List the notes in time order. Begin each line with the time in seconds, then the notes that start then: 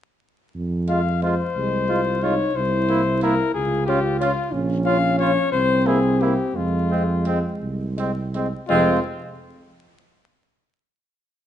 0.55 F2
0.88 G#3 F4 F5
1.22 G#3 F4 C5
1.56 C2 G#3
1.88 G#3 F4
2.22 G#3 D#4 F4 C#5
2.56 C2 E4 C5
2.89 A#3 E4
3.23 A#3 E4 A#4
3.54 C#2 F4 G#4
3.86 C#4 F4 G4
4.20 C#4 F4
4.52 A#1 C#4
4.86 C#4 F4 F5
5.18 C#4 F4 C#5
5.52 C2 C4 C5
5.86 A#3 E4 G#4
6.21 A#3 E4 G4
6.55 F2 G#3 F4
6.91 G#3 C4
7.25 G#3 C4
7.62 C2
7.97 G#3 C4
8.35 G#3 C4
8.68 F1 F3 G#3 C4 F4